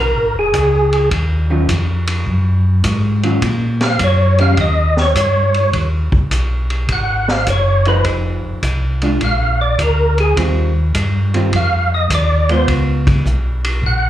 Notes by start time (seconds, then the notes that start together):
Already playing: B1
0.00 A#4
0.15 G#1
0.34 E1
0.39 G#4
0.53 C#2, kick, hi-hat pedal, ride
0.93 ride
1.11 D#2, kick, ride
1.50 D#3 F#3 C#4 F4
1.69 F2, kick, hi-hat pedal, ride
2.07 ride
2.26 F#2, kick
2.84 G#2, kick, hi-hat pedal, ride
3.23 D#3 F#3 C#4 F4, ride
3.42 A#2, kick, ride
3.81 F5, snare, ride
3.99 F#2, kick, hi-hat pedal, ride
4.04 C#5
4.38 D#3 A#3 C#4 G4 F5, ride
4.57 D#2 D#5, kick, ride
4.97 C#5, snare
5.15 G2, kick, hi-hat pedal, ride
5.54 ride
5.73 D#2, kick, ride
6.12 D#2, kick
6.31 B1, kick, hi-hat pedal, ride
6.70 ride
6.88 G#1 F#5, kick, ride
7.28 F5, snare
7.46 F#1 C#5, kick, hi-hat pedal, ride
7.85 F3 D#4 G#4 B4 C5, ride
8.04 F1, kick, ride
8.44 F1
8.62 C2, kick, hi-hat pedal, ride
9.01 G#3 D4 F4, ride
9.20 A#1 F5, kick, ride
9.61 D5
9.78 D2 A#4, kick, hi-hat pedal, ride
10.18 G#4, ride
10.36 D#2 D#3 G3 C4 F4, kick, ride
10.94 G2, kick, hi-hat pedal, ride
11.34 D#3 G3 C4 F4, ride
11.52 F2 F5, kick, ride
11.94 D#5
12.10 D#2, kick, hi-hat pedal, ride
12.14 D5
12.49 G#3 B3 F4 C5, ride
12.68 C#2, kick, ride
13.07 kick, ride
13.26 B1, kick, hi-hat pedal
13.64 ride
13.83 A#1 F#5, kick